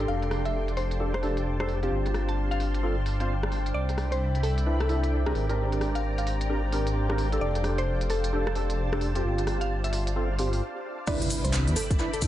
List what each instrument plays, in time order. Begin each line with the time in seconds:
Already playing: ambient pad D4 F5, string machine D5 G5 C6
0.00 synth stab D4 G4 A4
0.08 detuned saw bass F1, synth pluck F5, string machine A5
0.21 ambient pad G5, closed hi-hat
0.31 cross-stick, open hi-hat
0.37 ambient pad C5
0.45 synth pluck E5, closed hi-hat
0.68 closed hi-hat
0.77 synth pluck C5, open hi-hat
0.91 closed hi-hat
1.00 synth stab D4 G4 A4
1.14 synth pluck C5, cross-stick
1.23 synth stab D4 G4 A4, open hi-hat
1.37 closed hi-hat
1.60 synth stab D4 G4 A4, synth pluck C5, cross-stick
1.69 open hi-hat
1.83 synth stab C4 F4 G4, closed hi-hat
1.91 detuned saw bass G1, string machine D5 F5 C6
2.06 closed hi-hat
2.14 cross-stick, open hi-hat
2.29 synth pluck A5, closed hi-hat
2.51 synth pluck F5, closed hi-hat
2.60 open hi-hat
2.74 closed hi-hat
2.83 synth stab C4 F4 A4
3.06 open hi-hat
3.20 synth stab C4 F4 C5, closed hi-hat
3.43 cross-stick
3.52 open hi-hat
3.66 closed hi-hat
3.74 detuned saw bass C2, synth pluck D5, string machine E5 G5 B5
3.89 closed hi-hat
3.98 cross-stick, open hi-hat
4.12 synth pluck C5, ambient pad E5, closed hi-hat
4.35 closed hi-hat
4.43 synth pluck A4, open hi-hat
4.58 closed hi-hat
4.66 synth stab D4 E4 B4
4.80 synth pluck A4, cross-stick
4.89 synth stab D4 E4 A4, open hi-hat
5.04 closed hi-hat
5.26 synth stab C4 D4 G4 A#4, synth pluck G#4, cross-stick
5.35 detuned saw bass G#1, string machine C5 A#5, open hi-hat
5.49 synth stab C4 D4 G4 A#4, closed hi-hat
5.72 closed hi-hat
5.81 cross-stick, open hi-hat
5.95 synth pluck F5, closed hi-hat
6.05 ambient pad F5
6.18 synth pluck F5, closed hi-hat
6.27 open hi-hat
6.41 closed hi-hat
6.50 synth stab C4 D4 G4 A#4
6.72 synth stab C4 D4 G4 A#4, open hi-hat
6.87 closed hi-hat
7.10 synth stab C4 D4 G4 A#4, cross-stick
7.18 open hi-hat
7.32 synth stab D4 G4 A4, closed hi-hat
7.41 detuned saw bass F1, synth pluck D5, string machine A5
7.55 closed hi-hat
7.64 cross-stick, open hi-hat
7.78 synth pluck C5, closed hi-hat
8.01 closed hi-hat
8.10 synth pluck A4, open hi-hat
8.24 closed hi-hat
8.33 synth stab D4 G4 A4
8.47 synth pluck A4, cross-stick
8.55 synth stab D4 G4 A4, open hi-hat
8.70 closed hi-hat
8.93 synth stab D4 G4 A4, synth pluck A4, cross-stick
9.01 open hi-hat
9.15 synth stab C4 F4 G4, closed hi-hat
9.24 detuned saw bass G1, string machine F5
9.38 closed hi-hat
9.47 cross-stick, open hi-hat
9.61 synth pluck F5, closed hi-hat
9.84 synth pluck E5, closed hi-hat
9.93 open hi-hat
10.07 closed hi-hat
10.16 synth stab C4 F4 A4
10.39 synth stab C4 F4 G4, open hi-hat
10.53 open hi-hat
11.07 synth stab D4 E4 B4, synth pluck D5, string machine D5 E5 G5 B5, kick, cross-stick, crash, impact, maracas
11.22 closed hi-hat
11.30 open hi-hat, maracas
11.44 detuned saw bass C2, synth pluck C5, closed hi-hat, maracas
11.53 clap, maracas
11.68 detuned saw bass E2, closed hi-hat
11.76 synth pluck A4, open hi-hat, maracas
11.91 kick, closed hi-hat, maracas
11.99 synth stab D4 E4 B4, maracas
12.13 synth pluck A4, closed hi-hat, maracas
12.21 detuned saw bass E2, synth stab D4 E4 A4, kick, open hi-hat, maracas